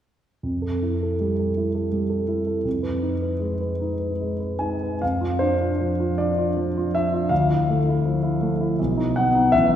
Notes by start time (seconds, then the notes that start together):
0.43 F2
0.62 A4
0.82 E4
1.02 A4
1.20 G3
1.39 A4
1.57 E4
1.75 A4
1.92 G3
2.10 A4
2.28 E4
2.47 A4
2.65 F2
2.83 B4
3.02 D#4
3.22 B4
3.39 G#3
3.61 B4
3.81 D#4
3.99 B4
4.21 G#3
4.40 B4
4.59 D#4 G#5
4.83 B4
5.02 F2 F5
5.21 F4
5.39 D4 C5
5.61 F4
5.81 F3
6.00 F4
6.18 D4 D5
6.38 F4
6.57 F3
6.78 F4
6.95 D4 E5
7.14 F4
7.29 D2 F5
7.49 E4
7.69 A3
7.88 E4
8.05 F3
8.23 E4
8.41 A3
8.61 E4
8.79 B1
8.97 D#4
9.16 B3 F#5
9.35 D#4
9.52 A1 E5